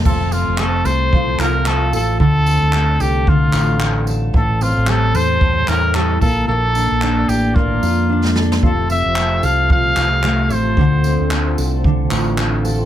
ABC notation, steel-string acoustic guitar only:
X:1
M:4/4
L:1/8
Q:"Swing 16ths" 1/4=112
K:F
V:1 name="Steel-string acoustic guitar"
F, C A, A F, F A, A | D, C A, A D, F A, A | A,, C G, A A,, E G, B, | B, D D A B, F D A |
F, C A, A F, F A, A | D, C A, A D, F A, A |]